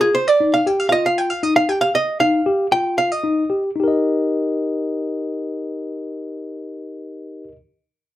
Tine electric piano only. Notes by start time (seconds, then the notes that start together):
0.40 D#4
0.66 G4
0.91 F4
1.43 D#4
1.69 G4
2.21 D#4
2.46 G4
2.72 F4
3.24 D#4
3.50 G4
3.76 D#4
3.80 G4 A#4
3.88 D#5